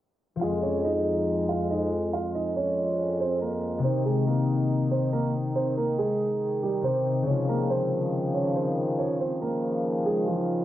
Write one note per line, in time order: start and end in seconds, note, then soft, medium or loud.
0.36 3.89 F3 medium
0.36 3.79 F4 medium
0.42 3.81 F2 medium
0.42 3.81 G#3 medium
0.42 0.59 F4 medium
0.42 3.81 G#4 medium
0.42 0.58 F5 medium
0.63 0.80 C#4 medium
0.63 0.80 C#5 medium
0.84 1.45 D#4 medium
0.84 1.45 D#5 medium
1.49 1.66 F4 medium
1.49 1.65 F5 medium
1.70 1.87 D#4 medium
1.70 1.87 D#5 medium
2.13 2.30 F4 medium
2.13 2.30 F5 medium
2.34 2.52 D#4 medium
2.34 2.51 D#5 medium
2.56 3.17 C#4 medium
2.56 3.16 C#5 medium
3.20 3.37 C4 medium
3.20 3.37 C5 medium
3.41 3.82 A#3 medium
3.41 3.82 A#4 medium
3.79 6.81 C3 medium
3.79 6.82 C4 medium
3.84 7.24 D#3 medium
3.84 4.02 C4 medium
3.84 7.24 D#4 medium
3.84 6.81 D#4 medium
3.84 4.01 C5 medium
4.06 4.23 G#3 medium
4.06 4.22 G#4 medium
4.27 4.88 A#3 medium
4.27 4.88 A#4 medium
4.92 5.09 C4 medium
4.92 5.08 C5 medium
5.13 5.30 A#3 medium
5.13 5.30 A#4 medium
5.56 5.73 C4 medium
5.56 5.72 C5 medium
5.77 5.94 A#3 medium
5.77 5.94 A#4 medium
5.99 6.60 G#3 medium
5.99 6.59 G#4 medium
6.63 6.80 G3 medium
6.63 6.80 G4 medium
6.82 7.32 C3 soft
6.82 7.27 C4 soft
6.82 7.25 C4 medium
6.82 7.28 D#4 soft
6.82 7.25 C5 medium
6.87 7.29 G4 soft
7.22 10.65 C#3 medium
7.22 10.65 G#3 medium
7.27 10.65 C#3 medium
7.27 10.65 D#3 medium
7.27 10.65 F3 medium
7.27 7.44 C#4 medium
7.27 10.65 D#4 medium
7.27 7.44 C#5 medium
7.33 10.65 F4 medium
7.49 7.66 A#3 medium
7.49 7.65 A#4 medium
7.70 8.31 C4 medium
7.70 8.31 C5 medium
8.35 8.52 C#4 medium
8.35 8.51 C#5 medium
8.56 8.73 C4 medium
8.56 8.73 C5 medium
8.99 9.16 C#4 medium
8.99 9.15 C#5 medium
9.20 9.37 C4 medium
9.20 9.37 C5 medium
9.42 10.02 A#3 medium
9.42 10.02 A#4 medium
10.06 10.23 G#3 medium
10.06 10.23 G#4 medium
10.27 10.65 F3 medium
10.27 10.65 F4 medium